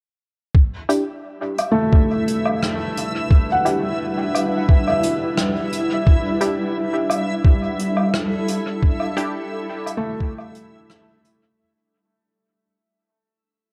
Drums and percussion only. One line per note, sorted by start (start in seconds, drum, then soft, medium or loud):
0.55 kick medium
0.90 closed hi-hat medium
1.58 closed hi-hat medium
1.58 low woodblock medium
1.93 kick medium
2.28 closed hi-hat medium
2.46 low woodblock medium
2.63 cross-stick medium
2.97 closed hi-hat medium
3.31 kick loud
3.66 closed hi-hat medium
4.35 closed hi-hat medium
4.35 low woodblock medium
4.69 kick loud
4.88 low woodblock medium
5.03 closed hi-hat medium
5.38 cross-stick medium
5.72 closed hi-hat medium
6.07 kick loud
6.41 closed hi-hat medium
7.10 closed hi-hat medium
7.10 low woodblock medium
7.45 kick loud
7.79 closed hi-hat medium
7.97 low woodblock medium
8.14 cross-stick loud
8.48 closed hi-hat medium
8.83 kick loud
9.00 low woodblock medium
9.17 closed hi-hat medium
9.86 closed hi-hat medium
9.86 low woodblock medium
10.20 kick loud
10.38 low woodblock medium
10.55 closed hi-hat medium
10.90 cross-stick medium
11.24 closed hi-hat medium